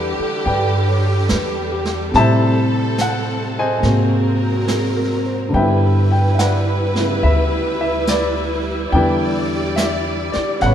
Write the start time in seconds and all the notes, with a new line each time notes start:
Already playing: E2 D3 E3 G3 D4 E4 G4 B4 D5 E5 F#5
0.19 muted upright bass stroke
0.45 G2 B4 D5 G5, brush sweep
0.88 C#5
1.29 E2 B4, snare, hi-hat pedal
1.72 G4
1.85 snare
2.12 A2 C3 G3 C4 A4, brush sweep, snare
2.16 A3 E4 C5 E5 A5
2.98 F#5, snare, hi-hat pedal
3.59 C5 D#5 G#5
3.80 G#2 C3 F#3 G#3 A#4, brush sweep, snare
3.84 A#3 F#4
4.68 G#4, snare, hi-hat pedal
4.96 A#4
5.25 C5
5.49 D3 G3 E4 B4
5.54 G2 B3 B4 E5 G5, brush sweep
5.59 E4
6.12 G5
6.35 E5
6.39 B4 D5 F#5, snare, hi-hat pedal
6.95 C#3 B3 E4, snare
7.23 D2 B4 E5, brush sweep
7.81 E5
8.07 D5, snare, hi-hat pedal
8.12 B4
8.92 E2 D3 G3 B3 E4 D5 G5, brush sweep
8.96 B4
9.76 E5, snare, hi-hat pedal
10.32 D5, muted upright bass stroke, snare
10.60 A1 C#3 G3 B3 B4 C#5 F#5, brush sweep, snare
10.66 B4 C#5